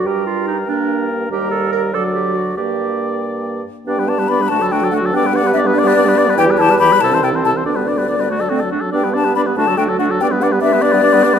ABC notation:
X:1
M:6/8
L:1/16
Q:3/8=95
K:Gm
V:1 name="Flute"
g12 | b6 ^f6 | g8- g z3 | [K:G] g2 a2 b2 a2 g2 f2 |
g2 f2 e2 d6 | g2 a2 b2 a2 g2 a2 | d8- d2 z2 | g2 a2 b2 a2 g2 f2 |
g2 f2 e2 d6 |]
V:2 name="Oboe"
B6 B6 | B6 d6 | d8- d2 z2 | [K:G] d B d B d B F A F A F A |
d B d B d B d B d B d B | G B G B G B A c A c A c | d B d B d B F A F A F A | d B d B d B F A F A F A |
d B d B d B d B d B d B |]
V:3 name="Clarinet"
G2 F2 E2 D4 z2 | G2 A2 B2 A2 G2 ^F2 | G6 z6 | [K:G] D B, D B, D B, D F D F D F |
D B, D B, D B, D B, D B, D B, | E G E G E G E C E C E C | D B, D B, D B, A,2 C2 D2 | D B, D B, D B, D F D F D F |
D B, D B, D B, D B, D B, D B, |]
V:4 name="French horn" clef=bass
G,6 B,6 | G,6 ^F,6 | B,8- B,2 z2 | [K:G] B, G, B, G, B, G, A, F, A, F, A, F, |
B, G, B, G, B, G, B, G, B, G, B, G, | E, G, E, G, E, G, C, E, C, E, C, E, | B, G, B, G, B, G, A, F, A, F, A, F, | B, G, B, G, B, G, A, F, A, F, A, F, |
B, G, B, G, B, G, B, G, B, G, B, G, |]
V:5 name="Bassoon" clef=bass
G,,12 | E,,6 D,,6 | G,,8- G,,2 z2 | [K:G] G,,6 D,,6 |
G,,12 | E,,6 C,,6 | D,,8- D,,2 z2 | G,,6 D,,6 |
G,,12 |]